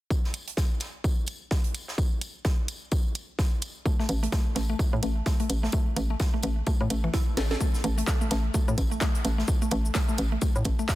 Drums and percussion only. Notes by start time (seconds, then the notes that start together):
0.10 kick, tambourine
0.24 snare
0.34 closed hi-hat, tambourine
0.48 closed hi-hat
0.57 kick, snare, tambourine
0.80 snare, closed hi-hat, tambourine
1.04 kick, tambourine
1.26 closed hi-hat, tambourine
1.51 kick, snare, tambourine
1.64 closed hi-hat
1.75 closed hi-hat, tambourine
1.88 snare
1.98 kick, tambourine
2.21 closed hi-hat, tambourine
2.45 kick, snare, tambourine
2.68 closed hi-hat, tambourine
2.92 kick, tambourine
3.15 closed hi-hat, tambourine
3.39 kick, snare, tambourine
3.62 closed hi-hat, tambourine
3.85 kick, tambourine
4.00 snare
4.09 closed hi-hat, tambourine
4.23 closed hi-hat
4.32 kick, snare, tambourine
4.55 snare, closed hi-hat, tambourine
4.79 kick, tambourine
5.03 closed hi-hat, tambourine
5.26 kick, snare, tambourine
5.40 closed hi-hat
5.50 closed hi-hat, tambourine
5.64 snare
5.72 kick, tambourine
5.96 closed hi-hat, tambourine
6.20 kick, snare, tambourine
6.43 closed hi-hat, tambourine
6.66 kick, tambourine
6.90 closed hi-hat, tambourine
7.13 kick, snare, tambourine
7.37 snare, closed hi-hat, tambourine
7.51 snare
7.60 kick, tambourine, shaker
7.74 snare, shaker
7.84 closed hi-hat, tambourine
7.98 closed hi-hat, shaker
8.07 kick, snare, clap, tambourine, shaker
8.21 shaker
8.31 snare, closed hi-hat, tambourine
8.54 kick, tambourine, shaker
8.68 shaker
8.78 kick, closed hi-hat, tambourine
8.92 shaker
9.00 kick, snare, clap, tambourine, shaker
9.15 closed hi-hat, shaker
9.25 closed hi-hat, tambourine
9.39 snare
9.48 kick, tambourine, shaker
9.62 shaker
9.71 closed hi-hat, tambourine
9.85 shaker
9.95 kick, snare, clap, tambourine, shaker
10.09 shaker
10.18 closed hi-hat, tambourine
10.41 kick, tambourine, shaker
10.56 shaker
10.65 kick, closed hi-hat, tambourine
10.79 shaker
10.89 kick, snare, clap, tambourine, shaker